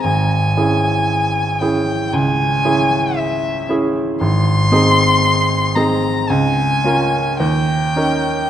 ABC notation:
X:1
M:4/4
L:1/8
Q:1/4=58
K:Dblyd
V:1 name="Violin"
a3 g a2 _f z | c'3 b a2 g2 |]
V:2 name="Grand piano"
A,,, [D_FA]2 [DFA] D,, [DFA]2 [DFA] | A,,, [CEA]2 [CEA] D,, [DFB] E,, [DEB] |]